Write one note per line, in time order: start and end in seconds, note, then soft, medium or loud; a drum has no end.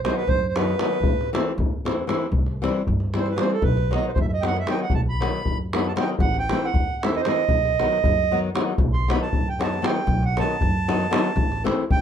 0.04 0.22 D#3 medium
0.04 0.22 F#3 medium
0.04 0.22 B3 medium
0.04 0.23 D#4 medium
0.04 0.16 C5 medium
0.04 davul high medium
0.16 0.29 B4 medium
0.27 0.72 F#2 medium
0.27 0.47 C5 loud
0.27 davul low medium
0.48 0.56 C5 medium
0.56 0.73 D#3 medium
0.56 0.73 F#3 medium
0.56 0.74 B3 medium
0.56 0.74 D#4 medium
0.56 1.30 B4 medium
0.56 davul high medium
0.69 davul high soft
0.79 0.96 D#3 medium
0.79 0.97 F#3 medium
0.79 0.97 B3 medium
0.79 0.97 D#4 medium
0.79 davul high medium
0.93 davul high soft
1.01 1.34 A1 medium
1.01 davul low loud
1.21 davul high soft
1.33 1.51 E3 medium
1.33 1.51 A3 medium
1.33 1.52 C4 medium
1.33 1.52 E4 medium
1.33 davul high medium
1.58 2.02 E2 medium
1.58 davul low medium
1.85 2.02 E3 medium
1.85 2.02 A3 medium
1.85 2.03 C4 medium
1.85 2.04 E4 medium
1.85 davul high medium
2.07 2.25 E3 medium
2.07 2.26 A3 medium
2.07 2.26 C4 medium
2.07 2.27 E4 medium
2.07 davul high medium
2.22 davul high soft
2.32 2.65 C2 medium
2.32 davul low medium
2.46 davul high soft
2.62 2.80 E3 medium
2.62 2.81 G3 medium
2.62 2.81 C4 medium
2.62 2.81 E4 medium
2.62 davul high medium
2.87 3.32 G2 medium
2.87 davul low medium
3.00 davul high soft
3.14 3.32 E3 medium
3.14 3.32 G3 medium
3.14 3.32 C4 soft
3.14 3.33 E4 medium
3.14 davul high medium
3.19 3.28 C5 medium
3.26 davul high soft
3.30 3.41 B4 medium
3.36 3.54 E3 medium
3.36 3.55 G3 medium
3.36 3.55 C4 medium
3.36 3.56 E4 medium
3.36 3.51 C5 medium
3.36 davul high medium
3.50 3.63 A4 medium
3.50 davul high soft
3.62 3.95 B1 medium
3.62 3.94 B4 medium
3.62 davul low medium
3.77 davul high soft
3.91 4.09 D#3 medium
3.91 4.10 F#3 medium
3.91 4.10 B3 soft
3.91 4.11 D#4 medium
3.91 davul high medium
3.95 4.05 D#5 medium
4.08 4.11 B4 medium
4.08 4.10 C5 medium
4.14 4.62 F#2 medium
4.14 4.19 C5 medium
4.14 davul low medium
4.21 4.26 E5 medium
4.28 4.31 E5 medium
4.33 4.43 D#5 medium
4.41 4.61 D#3 medium
4.41 4.61 F#3 soft
4.41 4.61 B3 soft
4.41 4.62 D#4 medium
4.41 4.45 G5 medium
4.41 davul high medium
4.47 4.57 F#5 medium
4.57 4.70 E5 medium
4.57 davul high soft
4.66 4.84 D#3 medium
4.66 4.84 F#3 medium
4.66 4.84 B3 medium
4.66 4.85 D#4 medium
4.66 4.80 G5 medium
4.66 davul high medium
4.79 4.93 F#5 medium
4.79 davul high soft
4.90 5.24 B1 medium
4.90 davul low medium
4.95 5.01 A5 medium
5.09 5.58 B5 loud
5.20 5.39 D#3 medium
5.20 5.39 F#3 medium
5.20 5.40 B3 medium
5.20 5.40 D#4 medium
5.20 davul high medium
5.45 5.92 F#2 medium
5.45 davul low medium
5.73 5.91 D#3 medium
5.73 5.91 F#3 soft
5.73 5.92 B3 medium
5.73 5.92 D#4 medium
5.73 5.87 B5 medium
5.73 davul high medium
5.85 5.93 A5 medium
5.85 davul high soft
5.96 6.13 D#3 medium
5.96 6.14 F#3 medium
5.96 6.14 B3 medium
5.96 6.14 D#4 medium
5.96 davul high medium
6.00 6.10 G5 medium
6.08 davul high soft
6.19 6.53 A1 loud
6.19 6.37 F#5 medium
6.19 davul low medium
6.34 davul high soft
6.39 6.66 G5 loud
6.49 6.68 E3 medium
6.49 6.69 A3 medium
6.49 6.69 C4 medium
6.49 6.70 E4 medium
6.49 davul high medium
6.65 7.05 F#5 medium
6.74 7.19 E2 medium
6.74 davul low medium
7.03 7.20 E3 medium
7.03 7.21 A3 medium
7.03 7.21 C4 soft
7.03 7.21 E4 medium
7.03 7.15 E5 medium
7.03 davul high medium
7.15 7.21 D#5 medium
7.15 davul high soft
7.22 7.43 E3 medium
7.22 7.28 C5 medium
7.22 davul high medium
7.26 7.43 A3 medium
7.26 7.44 C4 medium
7.26 7.44 E4 medium
7.26 8.40 D#5 medium
7.36 davul high soft
7.48 7.82 B1 medium
7.48 davul low medium
7.65 davul high soft
7.80 7.98 D#3 medium
7.80 7.98 F#3 medium
7.80 7.98 B3 medium
7.80 7.99 D#4 medium
7.80 davul high soft
7.92 davul high soft
8.04 8.49 F#2 medium
8.04 davul low medium
8.31 8.49 D#3 medium
8.31 8.49 F#3 medium
8.31 8.49 B3 medium
8.31 8.50 D#4 medium
8.55 8.72 D#3 medium
8.55 8.72 F#3 medium
8.55 8.72 B3 medium
8.55 8.73 D#4 medium
8.55 davul high medium
8.78 9.11 B1 medium
8.78 davul low medium
8.93 9.09 C6 medium
8.93 davul high soft
9.08 9.26 D#3 medium
9.08 9.27 F#3 medium
9.08 9.27 B3 medium
9.08 9.28 D#4 medium
9.08 9.21 B5 medium
9.08 davul high medium
9.22 9.48 A5 medium
9.33 9.78 F#2 medium
9.33 davul low medium
9.49 9.62 G5 medium
9.59 9.77 D#3 medium
9.59 9.77 F#3 medium
9.59 9.77 B3 medium
9.59 9.78 D#4 medium
9.59 9.86 A5 medium
9.59 davul high medium
9.74 davul high soft
9.82 10.00 D#3 medium
9.82 10.00 F#3 soft
9.82 10.00 B3 medium
9.82 10.00 D#4 medium
9.82 10.24 G5 medium
9.82 davul high medium
9.96 davul high soft
10.07 10.40 B1 loud
10.07 davul low medium
10.23 10.38 F#5 medium
10.23 davul high soft
10.37 10.55 D#3 medium
10.37 10.55 F#3 medium
10.37 10.56 B3 medium
10.37 10.56 D#4 medium
10.37 11.63 A5 medium
10.37 davul high medium
10.61 11.06 F#2 medium
10.61 davul low medium
10.88 11.06 D#3 medium
10.88 11.05 F#3 medium
10.88 11.06 B3 soft
10.88 11.06 D#4 medium
10.88 davul high medium
11.00 davul high soft
11.11 11.28 D#3 medium
11.11 11.29 F#3 medium
11.11 11.29 B3 medium
11.11 11.30 D#4 medium
11.11 davul high medium
11.25 davul high soft
11.36 11.69 A1 medium
11.36 davul low medium
11.52 davul high soft
11.64 11.83 E3 medium
11.64 11.83 A3 medium
11.64 11.83 C4 medium
11.64 11.84 E4 medium
11.64 davul high medium
11.90 12.01 E2 medium
11.90 12.01 G5 loud
11.90 davul low medium